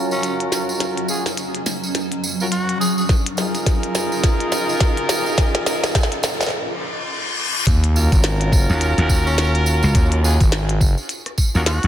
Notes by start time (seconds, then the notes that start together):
Already playing: F#3 C#4 F4 F#4 A#4 D#5 A#5, riser
0.11 C#4, tambourine
0.23 closed hi-hat, tambourine
0.40 closed hi-hat
0.52 snare, tambourine
0.69 tambourine
0.80 snare, closed hi-hat, tambourine
0.97 closed hi-hat
1.08 C#4 F4 F#4 G#4, tambourine
1.26 snare, closed hi-hat, tambourine
1.37 closed hi-hat, tambourine
1.55 closed hi-hat
1.66 snare, tambourine
1.83 tambourine
1.95 snare, closed hi-hat, tambourine
2.12 closed hi-hat
2.24 tambourine
2.40 C#4 F4 F#4 A#4, tambourine
2.52 F#4, closed hi-hat, tambourine
2.69 closed hi-hat
2.80 G#4, tambourine
2.98 G#4, tambourine
3.08 C#4, kick, snare, tambourine
3.26 closed hi-hat
3.36 D#4 F4 G#4 A#4, snare, tambourine
3.54 closed hi-hat, tambourine
3.66 kick, snare, closed hi-hat, tambourine
3.83 closed hi-hat
3.95 snare, tambourine
4.12 tambourine
4.24 kick, snare, closed hi-hat, tambourine
4.40 closed hi-hat
4.52 snare, tambourine
4.69 tambourine
4.80 kick, snare, closed hi-hat
4.97 closed hi-hat
5.09 snare, tambourine
5.26 tambourine
5.38 kick, snare, closed hi-hat, tambourine
5.55 snare, closed hi-hat
5.66 D#4 F4 G#4 A#4, snare, tambourine
5.84 snare, closed hi-hat, tambourine
5.95 kick, snare, closed hi-hat, tambourine
6.03 snare
6.12 closed hi-hat
6.23 snare, tambourine
6.41 snare, tambourine
6.43 snare
6.46 snare
6.48 snare
6.50 snare, reverse cymbal
7.67 D#2, kick, closed hi-hat, tambourine, sub drop
7.84 closed hi-hat
7.95 C#4 F4 F#4 A#4, tambourine
8.12 G#1, kick, closed hi-hat, tambourine
8.24 snare, closed hi-hat, tambourine
8.41 closed hi-hat
8.52 kick, tambourine
8.69 D#2, tambourine
8.81 closed hi-hat, tambourine
8.98 D#2, closed hi-hat
9.09 kick, tambourine
9.26 C#4, tambourine
9.38 snare, closed hi-hat, tambourine
9.55 closed hi-hat
9.66 tambourine
9.83 C#2, tambourine
9.95 D#2, kick, closed hi-hat, tambourine
10.12 closed hi-hat
10.23 C#4 F4 F#4 G#4, cross-stick, tambourine
10.40 G#1, kick, closed hi-hat, tambourine
10.52 snare, closed hi-hat, tambourine
10.69 closed hi-hat
10.81 kick, tambourine
10.98 tambourine
11.09 closed hi-hat, tambourine
11.26 cross-stick, closed hi-hat
11.38 kick, tambourine
11.55 D#2 C#4 F4 F#4 A#4, tambourine
11.66 F#4, snare, closed hi-hat, tambourine
11.83 D#2, closed hi-hat